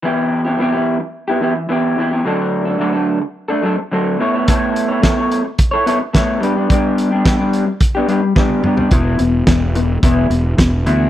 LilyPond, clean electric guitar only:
\new Staff \with { instrumentName = "Clean electric guitar" } { \time 4/4 \key e \dorian \tempo 4 = 108 <e b e' g'>8. <b e' g'>16 <e b e' g'>16 <b e' g'>4 <b e' g'>16 <e b e' g'>8 <e b e' g'>8 <e b e' g'>16 <b e' g'>16 | <d fis a d' a'>8. <a d' a'>16 <d fis a d' a'>16 <a d' a'>4 <a d' a'>16 <fis a d' a'>8 <d fis a d' a'>8 <a b e' a' cis''>16 <e' a' cis''>16 | <a b e' a' cis''>8. <e' a' cis''>16 <a b e' a' cis''>16 <e' a' cis''>4 <e' a' cis''>16 <b e' a' cis''>8 <a b e' a' cis''>8 <g b d' g'>16 <b d' g'>16 | <g b d' g'>8. <b d' g'>16 <g b d' g'>16 <b d' g'>4 <b d' g'>16 <g b d' g'>8 <g b d' g'>8 <g b d' g'>16 <b d' g'>16 |
<e b e'>8 <e b>8 <e b>8 <e b>8 <e b e'>8 <e b>8 <e b>8 <e b e'>8 | }